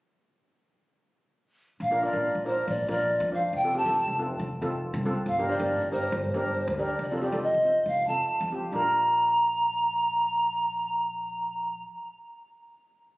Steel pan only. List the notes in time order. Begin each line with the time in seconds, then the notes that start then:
1.91 D4 F4 A#4
2.02 D4 F4 A#4
2.14 D4 F4 A#4
2.46 D4 F4 A#4
2.88 D4 F4 A#4
3.32 D4 F4 C5
3.64 C4 F4 A4
3.74 C4 F4 G4
3.85 C4 F4 A4
4.19 C4 F4 A4
4.62 C4 F4 A4
5.05 C4 F4 A4
5.38 D4 G4 A#4
5.49 D4 G4 C5
5.60 D4 G4 A#4
5.92 D4 G4 A#4
6.34 D4 G4 A#4
6.78 D4 G4 A#4
7.12 C4 F4 A4
7.21 C4 F4 G4
7.32 C4 F4 A4
7.64 C4 F4 C5
8.09 C4 F4 A4
8.52 C4 F4 G4
8.72 D4 F4 A#4